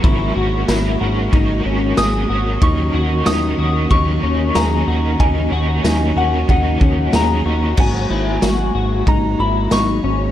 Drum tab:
CC |--------|--------|--------|x-------|
RD |x-x-x-x-|x-x-x-x-|x-x-x-x-|--x-x-x-|
TB |--x---x-|--x---x-|--x---x-|--x---x-|
SD |--o---o-|--o---o-|--o---o-|--o---o-|
BD |o---o---|o---o---|o---oo--|o---o---|